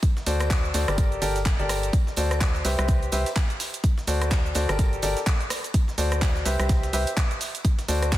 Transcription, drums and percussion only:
0.02 kick, closed hi-hat, tambourine, shaker
0.17 snare, shaker
0.26 open hi-hat, tambourine, shaker
0.39 cross-stick, closed hi-hat, tambourine, shaker
0.50 kick, snare, clap, closed hi-hat, tambourine, shaker
0.65 shaker
0.74 open hi-hat, tambourine, shaker
0.88 cross-stick, closed hi-hat, tambourine, shaker
0.98 kick, closed hi-hat, tambourine, shaker
1.12 closed hi-hat, shaker
1.22 open hi-hat, tambourine, shaker
1.36 snare, closed hi-hat, tambourine, shaker
1.46 kick, snare, clap, closed hi-hat, tambourine, shaker
1.60 closed hi-hat, shaker
1.69 cross-stick, open hi-hat, tambourine, shaker
1.83 closed hi-hat, tambourine, shaker
1.93 kick, closed hi-hat, tambourine, shaker
2.07 snare, shaker
2.16 open hi-hat, tambourine, shaker
2.31 cross-stick, closed hi-hat, tambourine, shaker
2.41 kick, snare, clap, closed hi-hat, tambourine, shaker
2.55 snare, shaker
2.65 open hi-hat, tambourine, shaker
2.78 cross-stick, closed hi-hat, tambourine, shaker
2.88 kick, closed hi-hat, tambourine, shaker
3.03 closed hi-hat, shaker
3.12 open hi-hat, tambourine, shaker
3.26 snare, closed hi-hat, tambourine, shaker
3.36 kick, snare, clap, closed hi-hat, tambourine, shaker
3.50 closed hi-hat, shaker
3.60 snare, open hi-hat, tambourine, shaker
3.74 closed hi-hat, tambourine, shaker
3.84 kick, closed hi-hat, tambourine, shaker
3.98 snare, shaker
4.07 open hi-hat, tambourine, shaker
4.21 cross-stick, closed hi-hat, tambourine, shaker
4.30 kick, snare, clap, closed hi-hat, tambourine, shaker
4.46 shaker
4.55 open hi-hat, tambourine, shaker
4.69 cross-stick, closed hi-hat, tambourine, shaker
4.79 kick, closed hi-hat, tambourine, shaker
4.93 closed hi-hat, shaker
5.02 open hi-hat, tambourine, shaker
5.16 snare, closed hi-hat, tambourine, shaker
5.26 kick, snare, clap, closed hi-hat, tambourine, shaker
5.41 closed hi-hat, shaker
5.50 cross-stick, open hi-hat, tambourine, shaker
5.64 closed hi-hat, tambourine, shaker
5.74 kick, closed hi-hat, tambourine, shaker
5.88 snare, shaker
5.98 open hi-hat, tambourine, shaker
6.11 cross-stick, closed hi-hat, tambourine, shaker
6.22 kick, snare, clap, closed hi-hat, tambourine, shaker
6.36 snare, shaker
6.45 open hi-hat, tambourine, shaker
6.59 cross-stick, closed hi-hat, tambourine, shaker
6.69 kick, snare, closed hi-hat, tambourine, shaker
6.83 snare, closed hi-hat, shaker
6.93 open hi-hat, tambourine, shaker
7.07 closed hi-hat, tambourine, shaker
7.17 kick, snare, clap, closed hi-hat, tambourine, shaker
7.31 closed hi-hat, shaker
7.41 open hi-hat, tambourine, shaker
7.54 closed hi-hat, tambourine, shaker
7.65 kick, closed hi-hat, tambourine, shaker
7.79 snare, closed hi-hat, shaker
7.88 open hi-hat, tambourine, shaker
8.02 cross-stick, closed hi-hat, tambourine, shaker
8.12 kick, snare, clap, closed hi-hat, tambourine, shaker

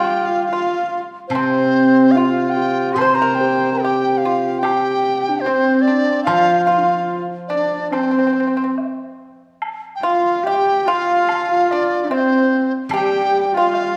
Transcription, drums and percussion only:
1.31 high woodblock
2.15 low woodblock
2.98 high woodblock
4.65 high woodblock
6.27 high woodblock
7.92 high woodblock
8.78 low woodblock
9.62 high woodblock
10.46 low woodblock
11.29 high woodblock
12.11 low woodblock
12.91 high woodblock
13.74 low woodblock

